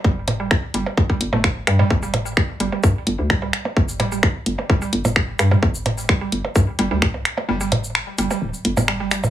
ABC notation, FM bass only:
X:1
M:4/4
L:1/16
Q:1/4=129
K:Cmix
V:1 name="FM bass" clef=bass
G,,,4- G,,, z G,,, z D,,, z G,,, G,,,3 G,,2 | G,,,4- G,,, z G,,, z G,, z G,,, D,,2 C,, z2 | G,,,4- G,,, z G,,, z D,,, z G,,, G,,,3 G,,2 | G,,,4- G,,, z G,,, z G,, z G,,, D,,2 C,, z2 |
G,,,4- G,,, z G,,, z D,,, z G,,, G,,,4 F,,, |]